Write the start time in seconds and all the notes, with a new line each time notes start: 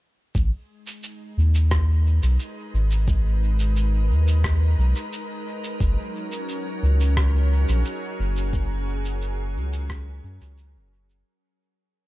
0.35 G#1 G#3, kick, cabasa
0.70 D#4
0.87 cabasa
1.03 cabasa
1.16 A#4
1.24 B4
1.37 D#2
1.55 cabasa
1.71 kick, cross-stick, cabasa
2.23 B1, cabasa
2.40 cabasa
2.74 G#1
2.91 cabasa
3.08 kick, cabasa
3.60 cabasa
3.76 cabasa
4.10 D#2
4.28 cabasa
4.44 kick, cross-stick, cabasa
4.78 B1
4.96 cabasa
5.13 cabasa
5.64 cabasa
5.80 F#1 F#3, kick, cabasa
5.92 C#4
6.32 cabasa
6.49 cabasa
6.83 C#2
7.00 cabasa
7.17 kick, cross-stick, cabasa
7.34 G#4
7.69 A#1, cabasa
7.85 cabasa
8.19 F#1
8.37 cabasa
8.53 kick, cabasa
9.05 cabasa
9.22 cabasa
9.56 C#2
9.73 cabasa
9.90 kick, cross-stick, cabasa
10.24 F#2
10.41 C#2, cabasa
10.58 cabasa
10.76 F#1
11.10 cabasa